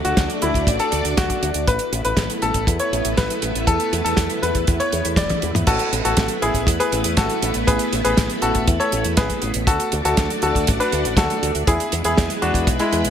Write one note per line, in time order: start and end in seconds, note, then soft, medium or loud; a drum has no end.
0.00 1.63 A3 medium
0.00 1.65 D4 medium
0.00 1.65 F#4 medium
0.00 1.65 D5 medium
0.05 0.15 D2 medium
0.05 0.28 F#4 medium
0.05 closed hi-hat medium
0.17 0.27 D2 loud
0.17 kick loud
0.17 snare loud
0.17 closed hi-hat medium
0.30 closed hi-hat soft
0.42 0.52 D2 medium
0.42 0.66 E4 medium
0.42 closed hi-hat medium
0.54 0.64 D2 medium
0.54 kick medium
0.54 closed hi-hat medium
0.67 0.77 A1 loud
0.67 kick loud
0.67 closed hi-hat medium
0.79 1.03 A4 medium
0.79 closed hi-hat soft
0.92 1.02 D2 medium
0.92 closed hi-hat medium
1.05 1.14 D2 medium
1.05 closed hi-hat medium
1.17 1.27 D2 loud
1.17 1.49 F#4 medium
1.17 kick loud
1.17 snare loud
1.17 closed hi-hat medium
1.30 kick medium
1.30 closed hi-hat medium
1.42 1.52 D2 medium
1.42 closed hi-hat medium
1.54 1.64 D2 medium
1.54 closed hi-hat medium
1.67 1.77 A1 loud
1.67 5.63 A3 medium
1.67 5.63 B3 medium
1.67 5.63 E4 medium
1.67 5.63 B4 medium
1.67 1.91 B4 loud
1.67 kick loud
1.67 closed hi-hat medium
1.79 closed hi-hat medium
1.92 2.02 A1 medium
1.92 closed hi-hat medium
2.05 2.14 A1 medium
2.05 2.28 B4 medium
2.05 closed hi-hat soft
2.17 2.27 A1 loud
2.17 kick medium
2.17 snare loud
2.17 closed hi-hat medium
2.30 closed hi-hat medium
2.42 2.52 A1 medium
2.42 2.66 A4 medium
2.42 closed hi-hat medium
2.54 2.64 A1 medium
2.54 kick medium
2.54 closed hi-hat medium
2.67 2.77 E2 loud
2.67 kick loud
2.67 closed hi-hat medium
2.79 3.03 C#5 medium
2.79 closed hi-hat medium
2.92 3.02 A1 medium
2.92 closed hi-hat medium
3.05 3.14 A1 medium
3.05 closed hi-hat medium
3.17 3.27 A1 loud
3.17 3.48 B4 medium
3.17 kick loud
3.17 snare loud
3.17 closed hi-hat medium
3.30 closed hi-hat medium
3.42 3.52 A1 medium
3.42 closed hi-hat medium
3.55 3.64 A1 medium
3.55 closed hi-hat medium
3.67 3.77 E2 loud
3.67 3.91 A4 loud
3.67 kick loud
3.67 closed hi-hat medium
3.80 closed hi-hat medium
3.92 4.02 E2 medium
3.92 closed hi-hat medium
4.04 4.15 E2 medium
4.04 4.28 A4 medium
4.04 closed hi-hat medium
4.17 4.27 E2 loud
4.17 kick medium
4.17 snare loud
4.17 closed hi-hat loud
4.30 closed hi-hat medium
4.42 4.52 E2 medium
4.42 4.66 B4 medium
4.42 closed hi-hat medium
4.55 4.65 E2 medium
4.55 kick medium
4.55 closed hi-hat medium
4.67 4.77 E2 medium
4.67 kick loud
4.67 closed hi-hat medium
4.80 5.03 C#5 medium
4.80 closed hi-hat soft
4.92 5.02 E2 medium
4.92 closed hi-hat medium
5.05 5.15 E2 medium
5.05 closed hi-hat medium
5.16 5.26 E1 loud
5.16 5.48 D5 medium
5.16 kick loud
5.16 snare loud
5.16 closed hi-hat loud
5.16 high tom medium
5.29 kick medium
5.29 closed hi-hat medium
5.29 high tom medium
5.42 5.52 E2 medium
5.42 closed hi-hat medium
5.55 5.65 E2 medium
5.55 closed hi-hat medium
5.55 mid tom medium
5.67 5.77 A1 loud
5.67 9.63 A3 medium
5.67 9.63 B3 medium
5.67 9.63 E4 medium
5.67 5.91 F#4 medium
5.67 5.91 A4 loud
5.67 9.63 B4 medium
5.67 kick loud
5.67 closed hi-hat loud
5.67 crash loud
5.79 closed hi-hat medium
5.92 6.02 A1 loud
5.92 closed hi-hat medium
6.05 6.14 A1 medium
6.05 6.28 F#4 medium
6.05 6.28 A4 medium
6.05 closed hi-hat medium
6.17 6.27 A1 loud
6.17 kick loud
6.17 snare loud
6.17 closed hi-hat loud
6.28 closed hi-hat medium
6.42 6.52 A1 medium
6.42 6.66 E4 medium
6.42 6.66 G#4 medium
6.42 closed hi-hat medium
6.54 6.64 A1 medium
6.54 kick medium
6.54 closed hi-hat medium
6.67 6.77 E2 loud
6.67 kick loud
6.67 closed hi-hat loud
6.80 7.03 G#4 medium
6.80 7.03 B4 medium
6.80 closed hi-hat medium
6.92 7.02 A1 medium
6.92 closed hi-hat medium
7.04 7.14 E2 medium
7.04 closed hi-hat medium
7.17 7.27 A1 loud
7.17 7.48 F#4 medium
7.17 7.48 A4 medium
7.17 kick loud
7.17 snare loud
7.17 closed hi-hat medium
7.30 closed hi-hat medium
7.42 7.52 A1 loud
7.42 closed hi-hat medium
7.54 7.65 A1 medium
7.54 closed hi-hat medium
7.67 7.77 A1 loud
7.67 7.91 G#4 medium
7.67 7.91 B4 loud
7.67 kick loud
7.67 closed hi-hat medium
7.79 closed hi-hat medium
7.92 8.02 A1 medium
7.92 closed hi-hat medium
8.04 8.15 A1 medium
8.04 8.28 G#4 medium
8.04 8.28 B4 loud
8.04 closed hi-hat medium
8.17 8.27 A1 loud
8.17 kick loud
8.17 snare loud
8.17 closed hi-hat loud
8.30 closed hi-hat medium
8.42 8.52 A1 medium
8.42 8.66 F#4 medium
8.42 8.66 A4 loud
8.42 closed hi-hat medium
8.55 8.65 A1 medium
8.55 kick medium
8.55 closed hi-hat medium
8.68 8.77 E2 loud
8.68 kick loud
8.68 closed hi-hat medium
8.80 9.03 A4 medium
8.80 9.03 C#5 medium
8.80 closed hi-hat soft
8.92 9.02 A1 medium
8.92 closed hi-hat medium
9.04 9.15 E2 medium
9.04 closed hi-hat medium
9.17 9.27 A1 loud
9.17 9.48 G#4 medium
9.17 9.48 B4 medium
9.17 kick loud
9.17 snare loud
9.17 closed hi-hat loud
9.30 kick medium
9.30 closed hi-hat medium
9.42 9.52 A1 medium
9.42 closed hi-hat medium
9.54 9.65 A1 medium
9.54 closed hi-hat medium
9.67 9.77 D2 loud
9.67 11.65 A3 medium
9.67 11.66 D4 medium
9.67 9.91 F#4 medium
9.67 11.65 F#4 medium
9.67 9.91 A4 loud
9.67 11.65 D5 medium
9.67 kick loud
9.67 closed hi-hat medium
9.80 closed hi-hat medium
9.92 10.02 D2 medium
9.92 closed hi-hat medium
10.05 10.15 D2 medium
10.05 10.28 F#4 medium
10.05 10.28 A4 medium
10.05 closed hi-hat medium
10.17 10.27 D2 loud
10.17 kick loud
10.17 snare loud
10.17 closed hi-hat medium
10.30 closed hi-hat medium
10.42 10.52 D2 medium
10.42 10.66 F#4 medium
10.42 10.66 A4 loud
10.42 closed hi-hat medium
10.55 10.65 D2 medium
10.55 kick medium
10.55 closed hi-hat medium
10.67 10.78 A1 loud
10.67 kick loud
10.67 closed hi-hat loud
10.80 11.03 D4 medium
10.80 11.03 B4 loud
10.80 closed hi-hat medium
10.92 11.02 D2 loud
10.92 closed hi-hat medium
11.05 11.14 A1 medium
11.05 closed hi-hat medium
11.17 11.27 D2 loud
11.17 11.49 F#4 medium
11.17 11.49 A4 medium
11.17 kick loud
11.17 snare loud
11.17 closed hi-hat medium
11.30 closed hi-hat soft
11.42 11.52 D2 medium
11.42 closed hi-hat medium
11.55 11.65 D2 medium
11.55 closed hi-hat medium
11.67 11.77 E2 loud
11.67 13.10 G#3 medium
11.67 13.10 B3 medium
11.67 13.10 E4 medium
11.67 11.91 E4 medium
11.67 11.91 G#4 loud
11.67 13.10 B4 loud
11.67 kick loud
11.67 closed hi-hat loud
11.80 closed hi-hat soft
11.92 12.02 E2 medium
11.92 closed hi-hat medium
12.04 12.14 E2 medium
12.04 12.28 E4 medium
12.04 12.28 G#4 medium
12.04 closed hi-hat medium
12.17 12.27 E2 loud
12.17 kick loud
12.17 snare loud
12.17 closed hi-hat loud
12.30 closed hi-hat medium
12.42 12.52 E2 medium
12.42 12.66 D4 medium
12.42 12.66 F#4 medium
12.42 closed hi-hat medium
12.54 12.64 E2 medium
12.54 kick medium
12.54 closed hi-hat medium
12.67 12.77 B1 loud
12.67 kick loud
12.67 closed hi-hat medium
12.79 13.03 G#3 medium
12.79 13.03 E4 medium
12.79 closed hi-hat medium
12.92 13.02 E2 medium
12.92 closed hi-hat medium
13.05 13.10 B1 medium
13.05 closed hi-hat medium